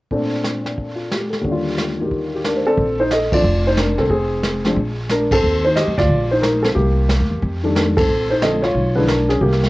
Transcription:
0.11 1.44 A#2 soft
0.11 1.45 A3 soft
0.11 1.45 C4 soft
0.11 1.45 D4 medium
0.11 brush sweep soft
0.11 kick soft
0.44 snare soft
0.44 hi-hat pedal soft
0.66 snare soft
0.78 brush sweep soft
0.78 kick soft
0.95 1.18 F4 soft
1.11 1.37 G4 soft
1.11 snare soft
1.11 hi-hat pedal soft
1.30 1.52 A4 soft
1.30 snare soft
1.41 2.76 D#2 soft
1.41 2.77 D3 soft
1.41 brush sweep soft
1.41 kick soft
1.48 2.79 G3 soft
1.48 2.81 F4 medium
1.78 snare soft
1.78 hi-hat pedal soft
2.00 2.77 D#3 soft
2.00 2.78 A#3 soft
2.00 2.33 G4 soft
2.11 brush sweep soft
2.11 kick soft
2.35 2.51 G4 soft
2.45 2.65 D4 soft
2.45 2.64 A#4 soft
2.45 snare soft
2.45 hi-hat pedal soft
2.56 2.73 C5 soft
2.67 2.97 C4 medium
2.67 3.00 A4 medium
2.67 2.83 D5 soft
2.77 3.41 A#1 medium
2.77 brush sweep soft
2.77 kick soft
3.00 3.10 D#4 medium
3.00 3.10 C5 medium
3.11 3.32 A4 medium
3.11 3.33 D#5 medium
3.11 snare soft
3.11 hi-hat pedal soft
3.32 3.43 F3 medium
3.32 3.43 A3 soft
3.32 3.43 C4 soft
3.32 3.43 D4 medium
3.32 3.64 F4 medium
3.32 3.67 D5 medium
3.32 kick medium
3.32 ride medium
3.43 3.94 F1 medium
3.43 brush sweep soft
3.67 3.78 D#4 medium
3.67 3.78 C5 medium
3.77 3.98 D4 medium
3.77 4.00 A#4 medium
3.77 snare soft
3.77 hi-hat pedal soft
3.98 4.09 C2 medium
3.98 4.10 C4 medium
3.98 4.11 A4 medium
3.98 snare soft
4.10 4.73 F1 medium
4.10 4.64 C4 medium
4.10 5.06 G#4 medium
4.10 brush sweep soft
4.10 kick soft
4.43 snare soft
4.43 hi-hat pedal medium
4.65 4.76 F3 medium
4.65 4.76 G#3 soft
4.65 4.76 C4 medium
4.65 4.76 D4 medium
4.65 snare soft
4.76 5.40 A#1 medium
4.76 brush sweep soft
4.76 kick soft
5.09 5.31 D4 medium
5.09 5.32 A#4 medium
5.09 snare soft
5.09 hi-hat pedal soft
5.31 5.63 C4 medium
5.31 5.63 A4 loud
5.31 kick medium
5.31 ride medium
5.42 5.84 D#2 medium
5.42 brush sweep soft
5.65 5.76 D#4 medium
5.65 5.77 C5 medium
5.76 5.97 G4 medium
5.76 5.98 D#5 medium
5.76 snare medium
5.76 hi-hat pedal soft
5.87 5.97 F2 medium
5.98 6.09 D2 medium
5.98 6.30 F4 medium
5.98 6.29 D5 medium
5.98 kick soft
5.98 snare soft
6.09 6.73 A#1 medium
6.09 brush sweep soft
6.09 kick soft
6.31 6.42 D#4 medium
6.31 6.42 C5 medium
6.42 6.63 D#4 medium
6.42 6.64 A#4 medium
6.42 snare soft
6.42 hi-hat pedal soft
6.63 6.69 C4 medium
6.63 6.68 A4 medium
6.63 snare soft
6.75 7.17 C2 medium
6.75 7.39 A#3 medium
6.75 7.78 G4 medium
6.75 brush sweep soft
6.75 kick soft
7.09 snare medium
7.09 hi-hat pedal medium
7.20 7.30 D#2 medium
7.30 7.41 E2 soft
7.42 8.05 F2 medium
7.42 brush sweep soft
7.42 kick soft
7.63 8.06 D#3 medium
7.63 8.06 G3 soft
7.63 8.07 A3 soft
7.63 7.76 D4 medium
7.75 7.82 D4 medium
7.75 7.80 A#4 medium
7.75 snare medium
7.75 hi-hat pedal soft
7.97 8.29 C4 medium
7.97 8.31 A4 medium
7.97 kick medium
7.97 ride medium
8.08 8.71 A#1 medium
8.08 brush sweep soft
8.30 8.42 D#4 medium
8.30 8.42 C5 medium
8.42 8.61 D3 soft
8.42 8.61 F3 soft
8.42 8.61 A3 soft
8.42 8.62 C4 medium
8.42 8.63 A4 medium
8.42 8.64 D#5 medium
8.42 snare soft
8.42 hi-hat pedal soft
8.62 8.95 F4 medium
8.62 8.94 C#5 medium
8.62 snare soft
8.75 9.38 B1 medium
8.75 brush sweep soft
8.75 kick soft
8.95 9.07 D3 soft
8.95 9.07 F3 medium
8.95 9.07 G#3 soft
8.95 9.07 D4 medium
8.95 9.08 E4 medium
8.95 9.08 B4 medium
9.08 9.29 D4 medium
9.08 9.30 A#4 medium
9.08 snare soft
9.08 hi-hat pedal medium
9.29 9.41 C#4 medium
9.29 9.40 G#4 medium
9.29 snare soft
9.41 9.69 C2 medium
9.41 9.69 A#3 medium
9.41 9.69 G4 medium
9.41 brush sweep soft
9.41 kick soft
9.53 snare soft
9.63 snare soft

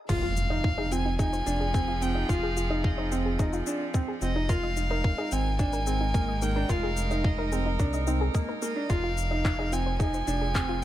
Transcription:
0.09 1.42 F1 medium
0.09 4.50 F3 medium
0.09 0.25 F4 medium
0.09 0.16 G#4 medium
0.09 0.93 F5 loud
0.09 kick loud
0.09 crash loud
0.09 impact medium
0.09 shaker soft
0.23 0.29 F4 loud
0.30 6.05 C4 medium
0.37 shaker medium
0.50 0.66 D#4 medium
0.64 0.71 D#4 medium
0.64 kick loud
0.78 0.86 D#4 medium
0.78 0.85 G#4 loud
0.78 5.16 G#4 medium
0.91 1.07 C4 medium
0.91 0.98 F4 medium
0.91 1.19 G#5 loud
0.91 shaker medium
1.05 1.12 D#4 loud
1.10 5.94 F4 medium
1.19 1.35 D#4 medium
1.19 1.26 G#4 medium
1.19 2.03 G#5 loud
1.19 kick loud
1.19 shaker soft
1.33 1.43 C5 medium
1.33 shaker soft
1.46 2.25 F1 medium
1.46 1.62 D4 medium
1.46 1.53 D#4 medium
1.46 shaker medium
1.61 1.71 G#4 medium
1.74 1.90 C4 medium
1.74 1.81 G#4 medium
1.74 kick loud
1.74 shaker soft
1.88 1.95 F4 medium
2.02 2.10 C4 medium
2.02 2.31 G5 loud
2.02 shaker medium
2.15 2.23 D#4 medium
2.29 3.62 F1 medium
2.29 2.36 D#4 medium
2.29 2.45 F4 medium
2.29 2.86 F5 medium
2.29 kick loud
2.29 shaker soft
2.43 2.50 G#4 loud
2.57 2.64 F4 medium
2.57 shaker medium
2.71 2.86 D#4 medium
2.71 2.77 D#4 loud
2.84 2.91 G#4 medium
2.84 3.39 D#5 medium
2.84 kick loud
2.98 3.06 D#4 medium
2.98 3.08 C5 medium
3.12 3.27 C4 medium
3.12 3.19 D#4 medium
3.12 shaker medium
3.26 3.36 G#4 medium
3.39 3.55 D#4 medium
3.39 3.46 G#4 medium
3.39 kick loud
3.39 shaker soft
3.53 3.60 F4 loud
3.53 shaker soft
3.67 3.83 D4 medium
3.67 shaker medium
3.94 4.10 C4 medium
3.94 4.01 D#4 medium
3.94 kick loud
3.94 shaker soft
4.08 4.15 G#4 loud
4.22 5.14 F1 loud
4.22 4.30 C4 medium
4.22 4.29 F4 medium
4.22 4.51 D#5 medium
4.22 shaker medium
4.36 4.44 D#4 medium
4.36 4.42 D#4 loud
4.49 8.90 G#3 medium
4.49 4.65 F4 medium
4.49 4.56 A#4 medium
4.49 5.34 F5 loud
4.49 kick loud
4.49 shaker soft
4.63 9.99 D#4 medium
4.63 4.73 D#5 medium
4.77 4.84 D#4 medium
4.77 shaker medium
4.86 10.66 A#4 medium
4.91 5.06 D#4 medium
4.91 5.01 A#4 medium
5.04 5.11 A#4 medium
5.04 kick loud
5.18 5.26 D#4 medium
5.18 5.25 G#4 loud
5.32 6.65 G#1 loud
5.32 5.48 C4 medium
5.32 5.60 G#5 loud
5.32 shaker medium
5.59 5.75 D4 medium
5.59 5.66 D#4 medium
5.59 6.44 G#5 loud
5.59 kick loud
5.59 shaker soft
5.73 5.80 A#4 loud
5.73 shaker soft
5.87 6.02 C4 medium
5.87 5.94 G#4 medium
5.87 shaker medium
5.93 9.82 A#5 medium
6.01 6.07 D#4 loud
6.14 6.30 A#3 medium
6.14 6.21 A#4 medium
6.14 kick loud
6.14 shaker soft
6.28 6.38 D#5 medium
6.42 6.50 A#3 medium
6.42 6.49 D#4 medium
6.42 6.72 G5 loud
6.42 shaker medium
6.56 6.64 D4 medium
6.56 6.66 A#4 medium
6.69 7.79 F1 medium
6.69 6.85 F4 medium
6.69 6.76 A#4 medium
6.69 7.27 F5 medium
6.69 kick loud
6.69 shaker soft
6.83 6.90 G#4 loud
6.97 shaker medium
7.11 7.27 D#4 medium
7.11 shaker soft
7.24 7.31 D#4 medium
7.24 7.80 D#5 medium
7.24 kick loud
7.38 7.46 D#4 medium
7.38 7.45 A#4 loud
7.52 7.68 C4 medium
7.52 7.59 G#4 medium
7.52 shaker medium
7.66 7.73 D#4 loud
7.79 8.30 C2 medium
7.79 7.95 D4 medium
7.79 7.86 A#4 medium
7.79 kick loud
7.79 shaker soft
7.93 8.04 D#5 medium
7.93 shaker soft
8.07 8.23 C4 medium
8.07 8.14 D#4 loud
8.07 shaker medium
8.21 8.25 G#4 loud
8.35 8.50 A#3 medium
8.35 8.45 D#5 medium
8.35 kick loud
8.35 shaker soft
8.49 8.53 A#4 loud
8.62 8.70 A#3 medium
8.62 8.92 D#5 medium
8.62 shaker medium
8.76 8.84 D4 medium
8.90 10.23 F1 medium
8.90 10.84 F3 medium
8.90 9.05 F4 loud
8.90 8.97 G#4 medium
8.90 9.74 F5 loud
8.90 kick loud
8.90 shaker soft
9.04 9.10 F4 loud
9.17 shaker medium
9.31 9.47 D#4 medium
9.42 10.84 C4 medium
9.42 9.52 D#4 medium
9.42 kick loud
9.42 clap medium
9.59 9.67 D#4 medium
9.59 9.65 G#4 loud
9.72 9.88 C4 medium
9.72 9.79 F4 medium
9.72 9.99 G#5 loud
9.72 shaker medium
9.86 10.84 F4 medium
9.86 9.93 C5 medium
10.00 10.15 D#4 medium
10.00 10.07 G#4 medium
10.00 10.84 G#4 medium
10.00 10.84 G#5 loud
10.00 kick loud
10.00 shaker soft
10.14 10.24 C5 medium
10.14 shaker soft
10.27 10.84 F1 medium
10.27 10.43 D4 medium
10.27 10.34 D#4 medium
10.27 shaker medium
10.41 10.51 G#4 medium
10.55 10.71 C4 medium
10.55 10.62 G#4 medium
10.55 kick loud
10.55 clap medium
10.55 shaker soft
10.69 10.76 F4 loud

